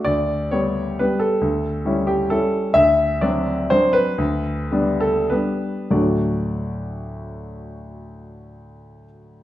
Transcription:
0.05 D2 D5
0.51 G3 B3 G4 C#5
0.99 G3 B3 G4 B4
1.19 A4
1.41 D2
1.85 G3 C#4 E4
2.07 G4
2.30 G3 C#4 E4 A4
2.74 D2 E5
3.21 F#3 C4 D4 D5
3.70 F#3 C4 D4 C5
3.93 B4
4.18 D2
4.72 G3 B3 D4
5.00 A4
5.30 G3 B3 D4 B4
5.90 D2 A2 F#3 A3 D4 F#4 D5

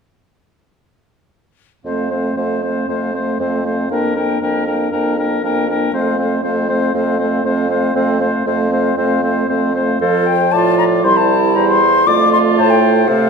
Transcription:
1.85 F2 A3 C4 C5 F5
2.11 A3 C4 C5 F5
2.37 F2 A3 C4 C5 F5
2.63 A3 C4 C5 F5
2.88 F2 A3 C4 C5 F5
3.14 A3 C4 C5 F5
3.40 F2 A3 C4 C5 F5
3.65 A3 C4 C5 F5
3.91 F2 A#3 D4 A#4 G5
4.16 A#3 D4 A#4 G5
4.42 F2 A#3 D4 A#4 G5
4.67 A#3 D4 A#4 G5
4.92 F2 A#3 D4 A#4 G5
5.17 A#3 D4 A#4 G5
5.43 F2 A#3 D4 A#4 G5
5.68 A#3 D4 A#4 G5
5.93 F2 A3 C4 C5 F5
6.18 A3 C4 C5 F5
6.43 F2 A3 C4 C5 F5
6.69 A3 C4 C5 F5
6.94 F2 A3 C4 C5 F5
7.18 A3 C4 C5 F5
7.44 F2 A3 C4 C5 F5
7.69 A3 C4 C5 F5
7.94 F2 A3 C4 C5 F5
8.20 A3 C4 C5 F5
8.46 F2 A3 C4 C5 F5
8.71 A3 C4 C5 F5
8.97 F2 A3 C4 C5 F5
9.22 A3 C4 C5 F5
9.47 F2 A3 C4 C5 F5
9.74 A3 C4 C5 F5
10.00 F2 F3 A4 C5 F5
10.26 G5
10.52 A2 F4 D5 A5
10.78 A#5
11.04 C2 G3 E4 C5 C6
11.17 A5
11.56 E2 C5 A#5
11.69 C6
12.06 F2 A3 F4 D5 D6
12.33 C6
12.58 A2 C5 A5
12.70 G5
13.08 C3 A3 A4 F5

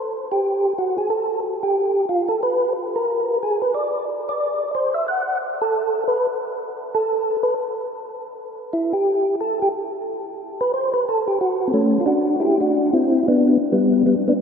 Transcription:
0.32 G4
0.78 F#4
0.98 G#4
1.10 A4
1.63 G4
2.09 F4
2.28 A4
2.43 B4
2.96 A#4
3.43 G#4
3.62 B4
3.74 D5
4.29 D5
4.75 C5
4.94 E5
5.08 F#5
5.62 A4
6.08 B4
6.95 A4
7.43 B4
8.73 E4
8.93 G4
9.41 A4
9.62 G4
10.61 B4
10.74 C5
10.94 B4
11.09 A4
11.28 G4
11.41 F#4
11.68 C4
11.74 A3 C#4
12.00 F4
12.06 D4 F#4
12.40 E4 G4
12.61 D4 F#4
12.93 C4 E4
13.28 B3 D4
13.72 G3 B3
14.06 G3 B3
14.28 B3 D4

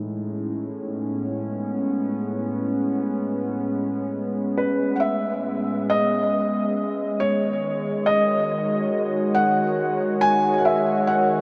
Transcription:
Already playing: A2 G#3 C#4 D#4
0.69 B3
4.57 B4
4.96 F#5
5.00 E5
5.90 D#5
7.14 D#3
7.20 C#5
7.38 C#5
8.06 D#5
8.24 F#4
9.35 F#5
10.21 G#5
10.58 F#5
10.65 E5
11.07 F#5

